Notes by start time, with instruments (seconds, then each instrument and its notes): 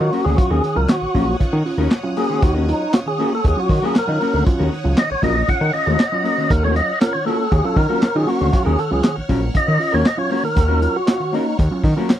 Already playing: string machine C#5 F#5 D#6
0.00 analog synth bass D#3, reed electric piano F#3 C#4 F4, tonewheel organ F#4, muted clean electric guitar stroke
0.12 clean electric guitar A#3 C#4 F#4 A#4, open hi-hat
0.24 analog synth bass D2, reed electric piano D#3, clean electric guitar A#3 C#4 F#4 C5, tonewheel organ G#4
0.37 reed electric piano F#3 C#4 F4, tonewheel organ F#4, muted clean electric guitar stroke, kick, closed hi-hat
0.50 analog synth bass D#2, clean electric guitar A#3 C#4 F#4 A#4, tonewheel organ G#4
0.63 reed electric piano D#3, muted clean electric guitar stroke, closed hi-hat
0.75 analog synth bass C#2, reed electric piano F#3 C#4 F4, tonewheel organ A#4, muted clean electric guitar stroke
0.88 reed electric piano D#3, tonewheel organ F#4, muted clean electric guitar stroke, snare, clap, closed hi-hat
1.02 analog synth bass A#1, muted clean electric guitar stroke
1.14 analog synth bass A#1, reed electric piano F#3 C#4 F4, clean electric guitar A#3 C#4 F#4 A#4, kick, open hi-hat
1.27 reed electric piano C#4 F4, muted clean electric guitar stroke
1.40 analog synth bass D#3, reed electric piano C#4 F4, muted clean electric guitar stroke, kick, closed hi-hat
1.53 analog synth bass D#3, reed electric piano D#3, muted clean electric guitar stroke
1.65 reed electric piano C#4 F4, open hi-hat
1.78 analog synth bass D#2, clean electric guitar A#3 C#4 F#4 A#4
1.91 muted clean electric guitar stroke, snare, clap, closed hi-hat
2.03 reed electric piano F#3 C#4 F4, muted clean electric guitar stroke
2.16 clean electric guitar A#3 C#4 F#4 A#4, tonewheel organ G#4, open hi-hat
2.30 reed electric piano D#3, clean electric guitar A#3 C#4 F#4 C5
2.42 analog synth bass D#2, reed electric piano D#3, tonewheel organ F#4, muted clean electric guitar stroke, kick, closed hi-hat
2.54 clean electric guitar A#3 C#4 F#4 A#4, reed electric piano C#4 F4
2.67 reed electric piano F#3 C#4 F4, tonewheel organ D#4, muted clean electric guitar stroke, closed hi-hat
2.80 muted clean electric guitar stroke
2.93 reed electric piano C#4 F4, tonewheel organ F#4, muted clean electric guitar stroke, snare, clap, closed hi-hat
3.06 reed electric piano D#3, tonewheel organ G#4, muted clean electric guitar stroke
3.18 clean electric guitar A#3 C#4 F#4 A#4, reed electric piano C#4 F4, open hi-hat
3.32 tonewheel organ A4, muted clean electric guitar stroke
3.45 analog synth bass D#2, tonewheel organ G#4, muted clean electric guitar stroke, kick, closed hi-hat
3.56 reed electric piano F#3 C#4 F4, tonewheel organ F#4, muted clean electric guitar stroke
3.69 analog synth bass D#3, reed electric piano D#3, kick, open hi-hat
3.82 reed electric piano F#3 C#4 F4, clean electric guitar A#3 C#4 F#4 A#4, tonewheel organ G#4
3.96 tonewheel organ A#4, muted clean electric guitar stroke, snare, clap, closed hi-hat
4.07 analog synth bass D#3, reed electric piano F#3 C#4 F4, muted clean electric guitar stroke
4.21 clean electric guitar A#3 C#4 F#4 A#4, open hi-hat
4.33 analog synth bass D2, reed electric piano D#3, clean electric guitar A#3 C#4 F#4 C5
4.46 reed electric piano F#3 C#4 F4, muted clean electric guitar stroke, kick, closed hi-hat
4.59 analog synth bass D#2, clean electric guitar A#3 C#4 F#4 A#4
4.72 reed electric piano D#3, muted clean electric guitar stroke, open hi-hat
4.84 analog synth bass C#2, reed electric piano F#3 C#4 F4, muted clean electric guitar stroke
4.97 reed electric piano D#3, tonewheel organ D#5, muted clean electric guitar stroke, snare, clap, closed hi-hat
5.10 analog synth bass A#1, tonewheel organ C#5, muted clean electric guitar stroke
5.22 analog synth bass A#1, reed electric piano F#3 C#4 F4, clean electric guitar A#3 C#4 F#4 A#4, tonewheel organ D#5, kick, open hi-hat
5.35 reed electric piano C#4 F4, muted clean electric guitar stroke
5.48 analog synth bass D#3, reed electric piano C#4 F4, tonewheel organ F#5, muted clean electric guitar stroke, kick, closed hi-hat
5.61 analog synth bass D#3, reed electric piano D#3, muted clean electric guitar stroke
5.73 reed electric piano C#4 F4, tonewheel organ D#5, open hi-hat
5.86 analog synth bass D#2, clean electric guitar A#3 C#4 F#4 A#4
5.99 muted clean electric guitar stroke, snare, clap, closed hi-hat
6.12 reed electric piano F#3 C#4 F4, muted clean electric guitar stroke
6.24 clean electric guitar A#3 C#4 F#4 A#4, open hi-hat
6.37 reed electric piano D#3, clean electric guitar A#3 C#4 F#4 C5
6.50 analog synth bass D#2, reed electric piano D#3, tonewheel organ A#4, string machine F6, muted clean electric guitar stroke, kick, closed hi-hat
6.62 clean electric guitar A#3 C#4 F#4 A#4, reed electric piano C#4 F4, tonewheel organ C#5
6.75 reed electric piano F#3 C#4 F4, tonewheel organ D#5, muted clean electric guitar stroke, closed hi-hat
6.88 muted clean electric guitar stroke
7.01 reed electric piano C#4 F4, tonewheel organ A#4, muted clean electric guitar stroke, snare, clap, closed hi-hat
7.13 reed electric piano D#3, tonewheel organ C#5, muted clean electric guitar stroke
7.25 clean electric guitar A#3 C#4 F#4 A#4, reed electric piano C#4 F4, tonewheel organ A4, open hi-hat
7.38 muted clean electric guitar stroke
7.51 analog synth bass D#2, tonewheel organ G#4, muted clean electric guitar stroke, kick, closed hi-hat
7.63 reed electric piano F#3 C#4 F4, tonewheel organ A4, muted clean electric guitar stroke
7.76 analog synth bass D#3, reed electric piano D#3, tonewheel organ A#4, kick, open hi-hat
7.89 reed electric piano F#3 C#4 F4, clean electric guitar A#3 C#4 F#4 A#4
8.02 snare, clap, closed hi-hat
8.15 analog synth bass D#3, reed electric piano F#3 C#4 F4, tonewheel organ G#4, muted clean electric guitar stroke
8.27 clean electric guitar A#3 C#4 F#4 A#4, tonewheel organ F#4, open hi-hat
8.40 analog synth bass D2, reed electric piano D#3, clean electric guitar A#3 C#4 F#4 C5
8.53 reed electric piano F#3 C#4 F4, muted clean electric guitar stroke, kick, closed hi-hat
8.65 analog synth bass D#2, clean electric guitar A#3 C#4 F#4 A#4, tonewheel organ G#4
8.78 reed electric piano D#3, tonewheel organ A4, muted clean electric guitar stroke, closed hi-hat
8.90 analog synth bass C#2, reed electric piano F#3 C#4 F4, tonewheel organ G#4, muted clean electric guitar stroke
9.03 reed electric piano D#3, muted clean electric guitar stroke, snare, clap, closed hi-hat
9.16 analog synth bass A#1, muted clean electric guitar stroke
9.28 analog synth bass A#1, reed electric piano F#3 C#4 F4, clean electric guitar A#3 C#4 F#4 A#4, kick, open hi-hat
9.42 reed electric piano C#4 F4, muted clean electric guitar stroke
9.54 analog synth bass D#3, reed electric piano C#4 F4, tonewheel organ D#5, muted clean electric guitar stroke, kick, closed hi-hat
9.67 reed electric piano D#3, analog synth bass D#3, muted clean electric guitar stroke
9.79 reed electric piano C#4 F4, open hi-hat
9.92 analog synth bass D#2, clean electric guitar A#3 C#4 F#4 A#4, tonewheel organ C#5
10.05 tonewheel organ D#5, muted clean electric guitar stroke, snare, clap, closed hi-hat
10.17 reed electric piano F#3 C#4 F4, tonewheel organ C#5
10.30 clean electric guitar A#3 C#4 F#4 A#4, tonewheel organ C#5, open hi-hat
10.43 reed electric piano D#3, tonewheel organ A#4, muted clean electric guitar stroke
10.56 analog synth bass D#2, reed electric piano D#3, muted clean electric guitar stroke, kick, closed hi-hat
10.68 clean electric guitar A#3 C#4 F#4 A#4, reed electric piano C#4 F4
10.81 reed electric piano F#3 C#4 F4, muted clean electric guitar stroke, closed hi-hat
10.94 tonewheel organ F#4, muted clean electric guitar stroke
11.06 reed electric piano C#4 F4, muted clean electric guitar stroke, snare, clap, closed hi-hat
11.19 reed electric piano D#3, muted clean electric guitar stroke
11.32 clean electric guitar A#3 C#4 F#4 A#4, reed electric piano C#4 F4, tonewheel organ D#4, open hi-hat
11.46 muted clean electric guitar stroke
11.59 analog synth bass D#2, muted clean electric guitar stroke, kick, closed hi-hat
11.71 reed electric piano F#3 C#4 F4, muted clean electric guitar stroke
11.84 reed electric piano D#3, analog synth bass D#3, kick, open hi-hat
11.96 reed electric piano F#3 C#4 F4, clean electric guitar A#3 C#4 F#4 A#4
12.10 muted clean electric guitar stroke, snare, clap, closed hi-hat